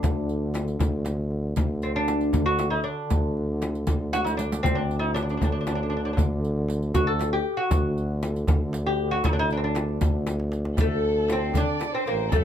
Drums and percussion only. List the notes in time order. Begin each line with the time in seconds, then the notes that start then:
0.03 riq, tombak dum, frame drum
0.29 riq
0.54 riq, tombak tek, frame drum
0.68 riq
0.79 riq, tombak dum, frame drum
1.05 riq, tombak tek, frame drum
1.31 tombak ka
1.56 riq, tombak dum, frame drum
1.82 riq
2.08 riq, tombak tek, frame drum
2.21 riq
2.33 riq, tombak dum, frame drum
2.59 riq, tombak tek, frame drum
2.85 tombak ka
3.10 riq, frame drum, tombak dum
3.37 tombak ka
3.62 riq, tombak tek, frame drum
3.75 riq, tombak ka
3.87 riq, tombak dum, frame drum
4.13 riq, tombak tek, frame drum
4.27 riq
4.39 riq
4.52 riq
4.64 riq, frame drum, tombak dum
4.91 riq
5.16 riq, tombak tek, frame drum
5.29 riq
5.41 riq, tombak dum, frame drum
5.67 riq, tombak tek, frame drum
5.93 tombak ka
6.17 riq, tombak dum, frame drum
6.45 riq
6.68 riq, tombak tek
6.83 riq
6.94 riq, tombak dum, frame drum
7.20 riq, tombak tek, frame drum
7.46 tombak ka
7.71 riq, tombak dum, frame drum
7.98 riq
8.23 riq, tombak tek, frame drum
8.36 riq
8.47 riq, tombak dum, frame drum
8.73 riq, tombak tek
8.99 tombak ka
9.24 riq, tombak dum, frame drum
9.49 riq, tombak ka
9.75 riq, tombak tek, frame drum
9.89 tombak ka
10.01 riq, frame drum, tombak dum
10.27 riq, tombak tek, frame drum
10.40 tombak ka
10.52 riq, tombak tek
10.65 tombak ka
10.77 riq, tombak dum, frame drum
11.28 riq, tombak tek, frame drum
11.42 tombak ka
11.54 riq, tombak dum, frame drum
11.80 riq, tombak tek, frame drum
12.07 riq
12.32 riq, frame drum, tombak dum